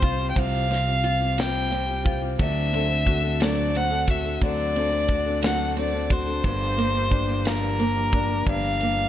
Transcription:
Already playing: C2 C3 G3 C4 F4 G4 C5
0.02 F4, kick, ride
0.18 C4 F4 G4
0.31 G5
0.36 C2 C3 F3 C4 F4 G4 F5, kick, ride
0.69 F3 C4 F4 G4, snare, ride
0.86 C4 F4 G4
1.04 F4, ride
1.20 C4 F4 G4
1.37 C3 F3 G3 C4 F4 G4 G5, snare, ride
1.71 F3 C4 F4 G4, ride
1.88 C4 F4 G4
2.05 F4, kick, ride
2.22 C4 F4 G4
2.38 D2 D3 F#3 C4 D4 A4 E5, kick, ride
2.72 F#3 C4 D4 A4, ride
2.89 C4 D4 A4
3.06 F#4, kick, ride
3.23 C4 D4 A4
3.40 D3 F#3 A3 C4 D4 A4 D5, snare, ride
3.73 F#3 C4 D4 A4 F#5, ride
3.90 C4 D4 A4
4.07 F#4 E5, kick, ride
4.24 C4 D4 A4
4.41 D2 D3 F#3 C4 D4 A4 D5, kick, ride
4.75 F#3 C4 D4 A4, ride
4.94 C4 D4
5.08 F#4, kick, ride
5.25 C4 D4 A4
5.42 D3 F#3 A3 C4 D4 A4 F#5, snare, ride
5.75 F#3 C4 D4 A4 D5, ride
5.93 C4 D4 A4
6.10 F#4 C5, kick, ride
6.26 C4 D4 A4
6.44 G1 G2 D3 F3 A#3 D4 G4, kick, ride
6.77 F3 A#3 D4 G4, ride
6.94 F3 A#3 D4 G4
7.10 D4, kick, ride
7.28 F3 A#3 D4 G4
7.45 G2 D3 F3 A#3 D4 G4 A#4, snare, ride
7.79 F3 A#3 D4 G4, ride
7.96 F3 A#3 D4 G4
8.12 D4, kick, ride
8.29 F3 A#3 D4 G4
8.46 G1 G2 D3 F3 A#3 D4 G4 F5, kick, ride
8.80 F3 A#3 D4 G4, ride
8.97 F3 A#3 D4 G4

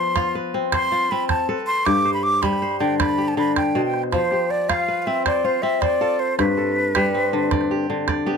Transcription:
Already playing: F3 B3 C6
0.16 F4, calabash thump, calabash click
0.35 B4
0.54 C4
0.72 C5 C6, calabash thump, calabash click
0.82 calabash click
0.92 F4
1.11 C4 B5
1.29 A5, calabash thump, calabash click
1.49 A4 B4
1.67 C6
1.86 G2 D6, calabash thump, calabash click
1.96 calabash click
2.05 C5, calabash click
2.14 B5
2.23 D6
2.34 calabash click
2.42 G3 B5, calabash thump, calabash click
2.53 calabash click
2.62 C5, calabash click
2.71 calabash click
2.80 D3 G5, calabash click
2.99 D5 B5, calabash thump, calabash click
3.09 calabash click
3.18 G4
3.28 A5
3.37 D3 B5
3.56 G5, calabash thump, calabash click
3.75 B2 C5
3.85 G5
3.94 calabash click
4.04 calabash click
4.12 F3 C5, calabash thump, calabash click
4.31 G4, calabash click
4.50 D5, calabash click
4.69 F4 F5, calabash thump, calabash click
4.88 B4
5.02 F5
5.07 C4 E5
5.26 C5 D5, calabash thump, calabash click
5.36 calabash click
5.44 F4 C5
5.62 C4 E5
5.81 C5 D5, calabash thump, calabash click
6.01 F4 A4
6.19 C5
6.39 G2 B4, calabash thump, calabash click
6.57 A4, calabash click
6.76 calabash click
6.95 G3, calabash thump, calabash click
7.14 C4
7.33 D3
7.51 D5, calabash thump, calabash click
7.61 calabash click
7.71 G4
7.90 D3
8.08 D5, calabash thump, calabash click
8.26 B3 G4

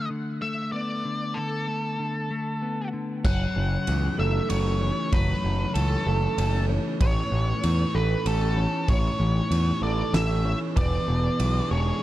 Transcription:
Already playing: A3 D4
0.10 D3
0.42 A3 E5
0.72 B3 D5
1.05 D3
1.34 D3 A4
1.68 A3
1.99 D3
2.31 A3
2.62 B3
2.93 D3
3.25 F#1 F#2 C#5 F#5, kick, crash
3.56 F#1 C#3
3.87 C#2 E3, ride
4.18 F#1 A3 A4 E5
4.50 F#1 C#4 C#5, ride
4.81 E3 C#5
5.13 F#1 F#2 B4 C#5, kick, ride
5.44 F#1 C#3
5.74 C#2 E3 A4, ride
6.06 F#1 A3 A4
6.38 F#1 C#4, ride
6.69 E3 C#5
7.00 A1 A2 C#5, kick, ride
7.32 A1 E3
7.63 E2 E3, ride
7.95 A1 A4 B4
8.26 A1 C#4 A4, ride
8.57 E3 C#5
8.88 A1 A2 C#5, kick, ride
9.19 A1 E3
9.51 E2 E3, ride
9.82 A1 A4 D5
10.13 A1 C#4 E5, snare, ride
10.45 E3 C#5
10.76 E1 E2 E3 B3 D4 G#4 B4 D5, kick, ride
11.08 E1 B2
11.40 B1 E3, ride
11.71 E1 G#3 G#4 C#5

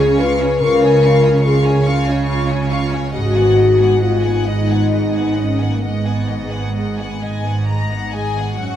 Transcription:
Already playing: C#2 C#3 G#3 C#4 F4 G#4 C#5 F5 G#5
0.00 C#4 C#5
0.19 F4 B4 F5 C#6
0.40 G#3 C#4 C#5 G#5
0.60 C#2 C#3 A#4 F5 C#6
0.64 F4
0.81 C#4 C#5 G#5
1.02 G#3 F4 F5 C#6
1.23 C#4 F4 C#5 G#5
1.43 G#4 F5 C#6
1.48 F4
1.64 C#4 C#5 G#5
1.85 C#2 C#3 F4 F5 C#6
2.05 C#5 G#5
2.10 C#4
2.27 F5 C#6
2.31 F4
2.48 C#4 G#4 C#5 G#5
2.70 F4 F5 C#6
2.90 G#3 C#5 G#5
2.94 C#4
3.10 G#1 G#2 D#5 F#5
3.15 G#2 G#3 F#4
3.32 D#3 F#5 G#5
3.37 B3
3.53 G#3 D#5 F#5
3.59 G#3
3.77 B3 F#5 G#5
3.99 G#3 D#4 F4 D#5 F#5
4.20 G#4 F#5 G#5
4.25 B3
4.44 G#1 G#2 G#3 D#4 B4 D#5 F#5
4.68 B3 D#5 F#5 G#5
4.90 G#3 B4 D#5 F#5
5.13 B3 D#4 F#5 G#5
5.34 G#3 B3 C#4 D#5 F#5
5.59 D#3 A#3 B3 F#5 G#5
5.82 G#1 G#2 G#3 B3 D#5 F#5
6.05 G#3 B3 F#5 G#5
6.28 D#3 G#3 D#5 F#5
6.50 B3 F#5 G#5
6.74 G#3 D#4 D#5 F#5
6.96 B3 G#4 F#5 G#5
7.19 G#1 G#2 G#3 B4 D#5 G#5
7.44 B3 D#5 F#5
7.67 G#3 B4 D#5 A#5
7.90 B3 D#4 F#5
8.11 G#3 B3 G#4 D#5 G#5
8.36 D#3 B3 F#5
8.57 F#2 F#3 C#4 F#4 F#5

